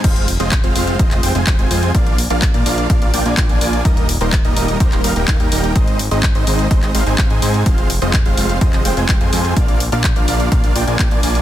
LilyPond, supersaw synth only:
\new Staff \with { instrumentName = "Supersaw synth" } { \time 4/4 \key f \dorian \tempo 4 = 126 <aes c' f' c'' f''>8 r16 <aes c' f' c'' ees''>16 r16 <aes c' f' c'' f''>16 <aes c' f' c'' f''>8 <aes c' f' ees''>16 <aes c' f' c'' ees''>16 <aes c' f' c'' g''>16 <aes c' f' c'' aes''>16 r16 <aes c' f' c'' aes''>16 <aes c' f' c'' aes''>8 | <bes d' f' d''>8 r16 <bes d' f' d'' f''>16 r16 <bes d' f' d'' f''>16 <bes d' f' d'' f''>8 <d' f' d'' f''>16 <bes d' f' d'' f''>16 <bes d' f' d'' g''>16 <bes d' f' d'' aes''>16 r16 <bes d' f' d'' aes''>16 <bes d' f' d'' aes''>8 | <g bes ees' bes' ees''>8 r16 <g bes ees' bes' c''>16 r16 <g bes ees' bes' ees''>16 <g bes ees' bes' ees''>8 <g bes c''>16 <g bes ees' bes' c''>16 <g bes ees' bes' f''>16 <g bes ees' bes' g''>16 <bes ees' f''>16 <g bes ees' bes' g''>16 <g bes ees' bes' g''>8 | <aes c' ees' c'' ees''>8 r16 <aes c' ees' c'' ees''>16 r16 <aes c' ees' c'' ees''>16 <aes c' ees' c'' ees''>8 <aes c' c'' ees''>16 <aes c' ees' c'' ees''>16 <aes c' ees' c'' f''>16 <aes c' ees' c'' aes''>16 r16 <aes c' ees' c'' aes''>16 <aes c' ees' c'' aes''>8 |
<aes c' f' c'' f''>8 r16 <aes c' f' c'' ees''>16 r16 <aes c' f' c'' f''>16 <aes c' f' c'' f''>8 <aes c' f' c'' ees''>16 <aes c' f' c'' ees''>16 <aes c' f' c'' g''>16 <aes c' f' c'' aes''>16 <aes c' g''>16 <aes c' f' c'' aes''>16 <aes c' f' c'' aes''>8 | <bes d' f' d''>8 r16 <bes d' f' d'' f''>16 r16 <bes d' f' d'' f''>16 <bes d' f' d'' f''>8 <bes d' f' d'' f''>16 <bes d' f' d'' f''>16 <bes d' f' d'' g''>16 <bes d' f' d'' aes''>16 <bes d'>16 <bes d' f' d'' aes''>16 <bes d' f' d'' aes''>8 | }